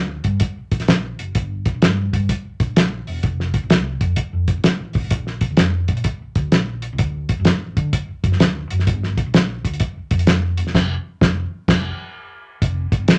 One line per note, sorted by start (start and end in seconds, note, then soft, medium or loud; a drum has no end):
0.00 0.20 D2 medium
0.24 0.38 G2 medium
0.24 kick medium
0.24 closed hi-hat medium
0.40 kick medium
0.40 closed hi-hat loud
0.58 muted fingered electric bass stroke soft
0.71 1.10 A#1 medium
0.71 kick medium
0.71 closed hi-hat medium
0.80 snare soft
0.80 closed hi-hat medium
0.88 snare loud
0.88 closed hi-hat medium
1.19 1.33 F#1 medium
1.19 closed hi-hat medium
1.35 1.67 G1 loud
1.35 kick loud
1.35 closed hi-hat medium
1.66 kick loud
1.66 closed hi-hat medium
1.74 1.81 A#1 medium
1.82 2.08 G2 medium
1.82 snare loud
1.82 closed hi-hat medium
2.13 2.27 G2 medium
2.13 kick medium
2.13 closed hi-hat medium
2.29 kick medium
2.29 closed hi-hat medium
2.45 muted fingered electric bass stroke soft
2.60 2.98 A#1 medium
2.60 kick medium
2.60 closed hi-hat medium
2.76 snare loud
2.76 closed hi-hat medium
3.07 3.21 E1 medium
3.07 open hi-hat medium
3.23 3.56 F1 loud
3.23 kick medium
3.23 closed hi-hat medium
3.40 snare soft
3.54 kick medium
3.54 closed hi-hat medium
3.63 3.70 A1 medium
3.70 3.96 C2 medium
3.70 snare loud
3.70 closed hi-hat medium
4.01 4.14 F2 medium
4.01 kick medium
4.01 closed hi-hat medium
4.16 kick medium
4.16 closed hi-hat loud
4.33 4.45 F2 medium
4.48 4.55 F1 medium
4.48 kick medium
4.48 closed hi-hat medium
4.57 4.64 A1 medium
4.64 snare loud
4.64 closed hi-hat medium
4.80 4.92 A1 medium
4.93 5.02 G#1 medium
4.93 kick loud
4.93 open hi-hat medium
5.04 5.10 A1 medium
5.11 5.43 A#1 loud
5.11 kick loud
5.11 closed hi-hat medium
5.27 snare soft
5.41 kick medium
5.41 closed hi-hat medium
5.51 5.57 D2 medium
5.57 5.84 F2 medium
5.57 snare loud
5.57 closed hi-hat medium
5.88 6.03 A#2 medium
5.88 kick medium
5.88 closed hi-hat medium
5.97 closed hi-hat medium
6.04 kick loud
6.04 closed hi-hat loud
6.22 muted fingered electric bass stroke soft
6.35 6.49 D2 medium
6.35 kick medium
6.35 closed hi-hat medium
6.52 6.85 A#1 medium
6.52 snare loud
6.52 closed hi-hat medium
6.82 closed hi-hat medium
6.93 6.99 C2 loud
6.98 7.31 D2 medium
6.98 kick loud
6.98 closed hi-hat medium
7.29 kick medium
7.29 closed hi-hat medium
7.40 7.49 F#2 medium
7.45 7.72 A1 medium
7.45 snare loud
7.45 closed hi-hat medium
7.77 7.90 D3 medium
7.77 kick medium
7.77 closed hi-hat medium
7.93 kick loud
7.93 closed hi-hat medium
8.08 muted fingered electric bass stroke soft
8.24 8.37 F#2 medium
8.24 kick medium
8.24 closed hi-hat medium
8.32 snare soft
8.40 snare loud
8.40 closed hi-hat medium
8.70 8.89 F#2 loud
8.70 closed hi-hat medium
8.79 snare soft
8.87 9.19 G1 loud
8.87 kick loud
8.87 closed hi-hat medium
9.03 snare soft
9.18 kick medium
9.18 closed hi-hat medium
9.26 9.57 A#1 medium
9.34 snare loud
9.34 closed hi-hat medium
9.65 9.78 D2 medium
9.65 kick medium
9.65 closed hi-hat medium
9.73 closed hi-hat medium
9.80 kick medium
9.80 closed hi-hat medium
9.97 muted fingered electric bass stroke soft
10.11 10.60 F2 medium
10.11 kick loud
10.11 closed hi-hat medium
10.19 closed hi-hat medium
10.27 snare loud
10.27 closed hi-hat medium
10.57 10.71 E1 medium
10.57 closed hi-hat medium
10.67 snare soft
10.75 10.95 F1 loud
10.75 kick medium
10.75 snare loud
10.75 crash medium
11.21 11.42 F1 loud
11.21 kick loud
11.21 snare loud
11.68 11.89 F1 loud
11.68 kick loud
11.68 snare loud
11.68 crash medium
12.62 12.86 F1 loud
12.62 kick medium
12.62 closed hi-hat medium
12.92 13.05 G1 medium
12.92 kick loud
12.92 closed hi-hat medium
13.08 13.19 A1 medium
13.08 snare loud
13.08 closed hi-hat medium